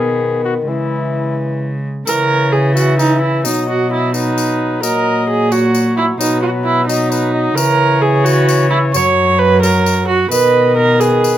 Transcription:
0.00 0.65 B2 medium
0.00 0.69 D#3 medium
0.00 0.64 B3 medium
0.00 0.44 G#4 medium
0.44 0.55 F#4 medium
0.67 1.85 C#3 soft
0.67 1.84 E3 medium
0.67 1.84 G#3 soft
0.67 1.36 E4 medium
2.06 3.46 C#3 medium
2.06 3.46 E3 medium
2.06 2.54 A#4 loud
2.06 2.72 C#5 medium
2.06 tambourine medium
2.53 2.76 G#4 medium
2.76 2.98 F#4 medium
2.76 3.47 E5 medium
2.76 tambourine medium
2.99 3.21 D#4 medium
2.99 tambourine soft
3.22 3.44 E4 medium
3.44 4.85 B2 medium
3.44 4.13 F#3 medium
3.44 3.67 D#4 medium
3.44 4.14 D#5 medium
3.44 tambourine medium
3.69 3.91 F#4 medium
3.92 4.14 E4 medium
4.14 4.81 F#3 medium
4.14 4.82 D#4 medium
4.14 4.82 B4 medium
4.14 tambourine medium
4.38 tambourine medium
4.82 6.19 A#2 medium
4.82 5.50 F#3 medium
4.82 5.28 A#4 medium
4.82 5.53 D#5 medium
4.82 tambourine medium
5.30 5.54 G#4 medium
5.51 6.18 F#3 medium
5.51 5.96 F#4 medium
5.51 6.21 C#5 medium
5.51 tambourine soft
5.74 tambourine medium
5.97 6.05 E4 loud
6.20 7.54 B2 medium
6.20 6.88 F#3 medium
6.20 6.41 D#4 medium
6.20 6.88 B4 medium
6.20 tambourine medium
6.42 6.50 F#4 medium
6.64 6.86 E4 medium
6.87 7.56 F#3 medium
6.87 7.57 D#4 medium
6.87 7.12 D#5 medium
6.87 tambourine medium
7.11 7.33 B4 medium
7.11 tambourine medium
7.34 7.56 D#5 medium
7.55 8.95 C#3 medium
7.55 8.90 E3 medium
7.55 8.03 A#4 loud
7.55 10.00 C#5 medium
7.55 tambourine medium
8.02 8.26 G#4 medium
8.24 8.69 F#4 loud
8.24 tambourine medium
8.49 tambourine medium
8.70 8.78 E4 loud
8.93 10.30 F#2 medium
8.93 9.61 F#3 medium
8.93 9.41 C#5 loud
8.93 tambourine medium
9.39 9.61 B4 loud
9.62 10.15 F#3 medium
9.62 10.07 A#4 loud
9.62 tambourine medium
9.86 tambourine medium
10.08 10.30 F#4 loud
10.31 11.38 B2 medium
10.31 11.38 D#3 medium
10.31 10.76 B4 loud
10.31 11.02 D#5 medium
10.31 tambourine medium
10.77 11.02 A#4 loud
11.00 11.38 G#4 loud
11.00 11.38 B4 medium
11.00 tambourine medium
11.24 tambourine medium

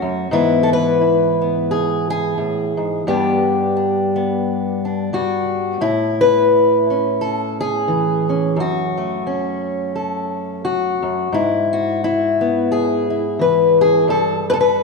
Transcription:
0.00 0.31 F#2 medium
0.00 0.32 A3 soft
0.00 0.32 C#4 soft
0.00 0.32 F#4 medium
0.31 2.37 G#2 medium
0.31 3.07 E3 soft
0.31 1.41 B3 soft
0.31 1.00 E4 medium
0.63 0.71 A4 medium
0.73 1.70 B4 loud
1.01 3.04 E4 soft
1.41 3.04 B3 soft
1.71 2.09 G#4 medium
2.10 3.08 G#4 medium
2.38 2.77 A2 medium
2.77 3.07 G#2 medium
3.07 5.79 G2 medium
3.07 5.12 G3 soft
3.07 4.15 B3 soft
3.07 3.75 D4 soft
3.07 5.13 G4 medium
3.76 4.84 D4 soft
4.16 5.79 B3 soft
4.85 5.79 D4 soft
5.13 5.79 G3 medium
5.13 5.83 F#4 medium
5.81 8.53 A2 medium
5.81 6.90 E4 medium
6.21 7.20 B4 medium
6.90 8.28 C#4 soft
7.21 7.60 A4 medium
7.60 8.58 G#4 loud
7.88 8.57 E3 medium
8.29 8.55 C#4 soft
8.56 11.01 F#2 medium
8.56 9.95 F#4 medium
8.97 11.33 A3 soft
9.27 11.33 C#4 soft
9.95 10.64 A4 soft
10.65 11.33 F#4 medium
11.02 11.32 F#2 medium
11.32 14.04 G#2 medium
11.32 12.02 E4 medium
11.73 12.70 F#4 medium
12.04 13.09 E4 medium
12.41 14.04 B3 soft
12.72 13.39 G#4 medium
13.10 14.04 E4 soft
13.39 14.08 E3 medium
13.39 13.79 B4 medium
13.81 14.09 G#4 medium
14.08 14.83 G2 medium
14.08 14.48 A4 medium
14.50 14.59 A4 medium
14.50 14.53 B4 medium
14.61 14.83 B4 medium

